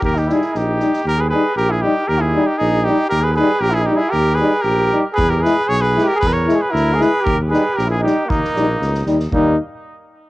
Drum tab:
SD |-oooo-oo|--------|--------|--------|
BD |o-------|--------|--------|--------|

SD |--------|--o-o-o-|--o-o-o-|--o-o-o-|
BD |--------|o-------|o-------|o-------|

SD |-oo-oooo|--------|
BD |o-------|o-------|